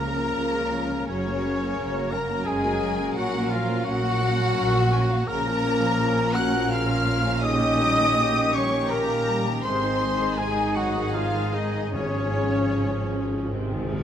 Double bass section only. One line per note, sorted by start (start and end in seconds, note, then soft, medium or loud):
0.00 0.27 C#2 medium
0.36 1.00 C#2 medium
1.08 1.70 F#1 medium
1.78 2.39 F#1 medium
2.48 3.09 F#1 medium
3.17 3.77 A#1 medium
3.85 4.48 A#1 medium
4.57 5.20 A#1 medium
5.28 9.61 A#1 medium
9.66 14.03 G#1 medium